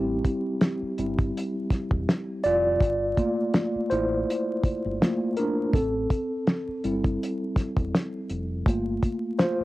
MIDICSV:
0, 0, Header, 1, 5, 480
1, 0, Start_track
1, 0, Tempo, 731707
1, 1841, Time_signature, 4, 2, 24, 8
1, 6324, End_track
2, 0, Start_track
2, 0, Title_t, "Tine electric piano"
2, 0, Program_c, 0, 4
2, 0, Note_on_c, 0, 55, 55
2, 0, Note_on_c, 0, 60, 57
2, 0, Note_on_c, 0, 64, 59
2, 0, Note_on_c, 0, 67, 70
2, 57, Control_c, 0, 64, 127
2, 254, Note_off_c, 0, 55, 0
2, 258, Note_off_c, 0, 64, 0
2, 373, Note_off_c, 0, 67, 0
2, 382, Note_off_c, 0, 60, 0
2, 647, Note_on_c, 0, 55, 45
2, 648, Note_on_c, 0, 60, 42
2, 652, Note_on_c, 0, 64, 48
2, 860, Note_off_c, 0, 55, 0
2, 861, Note_off_c, 0, 60, 0
2, 863, Note_off_c, 0, 64, 0
2, 1599, Note_on_c, 0, 74, 104
2, 1614, Note_on_c, 0, 65, 86
2, 1850, Control_c, 0, 64, 0
2, 1959, Control_c, 0, 64, 127
2, 2084, Note_off_c, 0, 65, 0
2, 2085, Note_on_c, 0, 57, 54
2, 2088, Note_on_c, 0, 58, 51
2, 2092, Note_on_c, 0, 65, 65
2, 2413, Note_off_c, 0, 57, 0
2, 2415, Note_off_c, 0, 58, 0
2, 2417, Note_off_c, 0, 65, 0
2, 2558, Note_on_c, 0, 72, 88
2, 2573, Note_on_c, 0, 64, 73
2, 2589, Note_off_c, 0, 74, 0
2, 3286, Note_on_c, 0, 57, 46
2, 3288, Note_on_c, 0, 58, 47
2, 3291, Note_on_c, 0, 65, 51
2, 3493, Note_off_c, 0, 72, 0
2, 3500, Note_off_c, 0, 57, 0
2, 3501, Note_off_c, 0, 58, 0
2, 3501, Note_off_c, 0, 64, 0
2, 3503, Note_off_c, 0, 65, 0
2, 3521, Note_on_c, 0, 70, 79
2, 3535, Note_on_c, 0, 62, 64
2, 3745, Note_off_c, 0, 70, 0
2, 3752, Note_off_c, 0, 62, 0
2, 3766, Note_on_c, 0, 69, 70
2, 3770, Control_c, 0, 64, 0
2, 3779, Note_on_c, 0, 60, 58
2, 3903, Control_c, 0, 64, 127
2, 4217, Note_off_c, 0, 69, 0
2, 4224, Note_off_c, 0, 60, 0
2, 4486, Note_on_c, 0, 55, 51
2, 4489, Note_on_c, 0, 60, 46
2, 4493, Note_on_c, 0, 64, 58
2, 5658, Note_off_c, 0, 55, 0
2, 5659, Note_off_c, 0, 60, 0
2, 5661, Note_off_c, 0, 64, 0
2, 5685, Note_on_c, 0, 57, 52
2, 5689, Note_on_c, 0, 58, 49
2, 5691, Control_c, 0, 64, 0
2, 5694, Note_on_c, 0, 65, 57
2, 5790, Control_c, 0, 64, 127
2, 6159, Note_on_c, 0, 72, 88
2, 6168, Note_off_c, 0, 65, 0
2, 6175, Note_on_c, 0, 65, 68
2, 6324, Note_off_c, 0, 57, 0
2, 6324, Note_off_c, 0, 58, 0
2, 6324, Note_off_c, 0, 65, 0
2, 6324, Note_off_c, 0, 72, 0
2, 6324, End_track
3, 0, Start_track
3, 0, Title_t, "Fingered electric bass"
3, 0, Program_c, 1, 33
3, 0, Note_on_c, 1, 33, 99
3, 130, Note_off_c, 1, 33, 0
3, 648, Note_on_c, 1, 31, 88
3, 853, Note_off_c, 1, 31, 0
3, 1257, Note_on_c, 1, 28, 88
3, 1348, Note_off_c, 1, 28, 0
3, 1608, Note_on_c, 1, 29, 86
3, 1813, Note_off_c, 1, 29, 0
3, 1843, Note_on_c, 1, 31, 96
3, 2050, Note_off_c, 1, 31, 0
3, 2570, Note_on_c, 1, 33, 91
3, 2774, Note_off_c, 1, 33, 0
3, 3183, Note_on_c, 1, 31, 85
3, 3272, Note_off_c, 1, 31, 0
3, 3765, Note_on_c, 1, 33, 99
3, 3971, Note_off_c, 1, 33, 0
3, 4489, Note_on_c, 1, 31, 82
3, 4694, Note_off_c, 1, 31, 0
3, 5098, Note_on_c, 1, 28, 85
3, 5189, Note_off_c, 1, 28, 0
3, 5447, Note_on_c, 1, 29, 82
3, 5652, Note_off_c, 1, 29, 0
3, 5684, Note_on_c, 1, 31, 94
3, 5891, Note_off_c, 1, 31, 0
3, 6324, End_track
4, 0, Start_track
4, 0, Title_t, "Muted fingered electric bass strokes"
4, 540, Note_on_c, 9, 29, 47
4, 606, Note_off_c, 9, 29, 0
4, 2463, Note_on_c, 9, 29, 46
4, 2529, Note_off_c, 9, 29, 0
4, 4382, Note_on_c, 9, 29, 46
4, 4448, Note_off_c, 9, 29, 0
4, 6302, Note_on_c, 9, 29, 45
4, 6324, Note_off_c, 9, 29, 0
4, 6324, End_track
5, 0, Start_track
5, 0, Title_t, "Drums"
5, 161, Note_on_c, 9, 36, 73
5, 163, Note_on_c, 9, 42, 66
5, 226, Note_off_c, 9, 36, 0
5, 228, Note_off_c, 9, 42, 0
5, 399, Note_on_c, 9, 42, 66
5, 402, Note_on_c, 9, 38, 113
5, 465, Note_off_c, 9, 42, 0
5, 468, Note_off_c, 9, 38, 0
5, 643, Note_on_c, 9, 42, 58
5, 708, Note_off_c, 9, 42, 0
5, 778, Note_on_c, 9, 36, 89
5, 785, Note_on_c, 9, 42, 32
5, 843, Note_off_c, 9, 36, 0
5, 851, Note_off_c, 9, 42, 0
5, 900, Note_on_c, 9, 42, 84
5, 966, Note_off_c, 9, 42, 0
5, 1118, Note_on_c, 9, 36, 88
5, 1126, Note_on_c, 9, 42, 73
5, 1132, Note_on_c, 9, 38, 39
5, 1184, Note_off_c, 9, 36, 0
5, 1192, Note_off_c, 9, 42, 0
5, 1198, Note_off_c, 9, 38, 0
5, 1253, Note_on_c, 9, 36, 90
5, 1319, Note_off_c, 9, 36, 0
5, 1371, Note_on_c, 9, 38, 108
5, 1378, Note_on_c, 9, 42, 85
5, 1436, Note_off_c, 9, 38, 0
5, 1443, Note_off_c, 9, 42, 0
5, 1599, Note_on_c, 9, 42, 59
5, 1665, Note_off_c, 9, 42, 0
5, 1840, Note_on_c, 9, 36, 111
5, 1852, Note_on_c, 9, 42, 81
5, 1906, Note_off_c, 9, 36, 0
5, 1917, Note_off_c, 9, 42, 0
5, 2081, Note_on_c, 9, 36, 72
5, 2083, Note_on_c, 9, 42, 65
5, 2147, Note_off_c, 9, 36, 0
5, 2148, Note_off_c, 9, 42, 0
5, 2320, Note_on_c, 9, 42, 62
5, 2323, Note_on_c, 9, 38, 115
5, 2385, Note_off_c, 9, 42, 0
5, 2388, Note_off_c, 9, 38, 0
5, 2563, Note_on_c, 9, 42, 59
5, 2629, Note_off_c, 9, 42, 0
5, 2822, Note_on_c, 9, 42, 86
5, 2887, Note_off_c, 9, 42, 0
5, 3040, Note_on_c, 9, 36, 90
5, 3048, Note_on_c, 9, 42, 75
5, 3105, Note_off_c, 9, 36, 0
5, 3113, Note_off_c, 9, 42, 0
5, 3292, Note_on_c, 9, 38, 104
5, 3299, Note_on_c, 9, 42, 83
5, 3358, Note_off_c, 9, 38, 0
5, 3365, Note_off_c, 9, 42, 0
5, 3520, Note_on_c, 9, 42, 59
5, 3586, Note_off_c, 9, 42, 0
5, 3762, Note_on_c, 9, 36, 112
5, 3773, Note_on_c, 9, 42, 81
5, 3827, Note_off_c, 9, 36, 0
5, 3839, Note_off_c, 9, 42, 0
5, 4003, Note_on_c, 9, 36, 77
5, 4006, Note_on_c, 9, 42, 65
5, 4069, Note_off_c, 9, 36, 0
5, 4071, Note_off_c, 9, 42, 0
5, 4243, Note_on_c, 9, 42, 67
5, 4246, Note_on_c, 9, 38, 109
5, 4309, Note_off_c, 9, 42, 0
5, 4312, Note_off_c, 9, 38, 0
5, 4486, Note_on_c, 9, 42, 59
5, 4552, Note_off_c, 9, 42, 0
5, 4620, Note_on_c, 9, 36, 83
5, 4628, Note_on_c, 9, 42, 34
5, 4686, Note_off_c, 9, 36, 0
5, 4694, Note_off_c, 9, 42, 0
5, 4745, Note_on_c, 9, 42, 82
5, 4810, Note_off_c, 9, 42, 0
5, 4961, Note_on_c, 9, 36, 90
5, 4969, Note_on_c, 9, 42, 78
5, 4975, Note_on_c, 9, 38, 37
5, 5026, Note_off_c, 9, 36, 0
5, 5035, Note_off_c, 9, 42, 0
5, 5041, Note_off_c, 9, 38, 0
5, 5095, Note_on_c, 9, 36, 88
5, 5104, Note_on_c, 9, 42, 34
5, 5161, Note_off_c, 9, 36, 0
5, 5170, Note_off_c, 9, 42, 0
5, 5213, Note_on_c, 9, 38, 105
5, 5220, Note_on_c, 9, 42, 85
5, 5279, Note_off_c, 9, 38, 0
5, 5286, Note_off_c, 9, 42, 0
5, 5442, Note_on_c, 9, 42, 61
5, 5507, Note_off_c, 9, 42, 0
5, 5681, Note_on_c, 9, 36, 112
5, 5693, Note_on_c, 9, 42, 84
5, 5747, Note_off_c, 9, 36, 0
5, 5759, Note_off_c, 9, 42, 0
5, 5922, Note_on_c, 9, 36, 76
5, 5925, Note_on_c, 9, 42, 68
5, 5988, Note_off_c, 9, 36, 0
5, 5990, Note_off_c, 9, 42, 0
5, 6161, Note_on_c, 9, 42, 62
5, 6164, Note_on_c, 9, 38, 113
5, 6226, Note_off_c, 9, 42, 0
5, 6229, Note_off_c, 9, 38, 0
5, 6324, End_track
0, 0, End_of_file